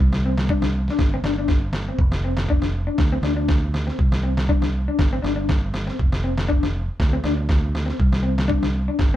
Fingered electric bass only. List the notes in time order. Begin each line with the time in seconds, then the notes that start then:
0.00 C2
0.99 G1
1.23 G1
1.98 F1
2.99 D2
3.22 D2
3.99 C2
4.99 G1
5.23 G1
5.99 F1
7.00 D2
7.24 D2
8.00 C2
8.99 G1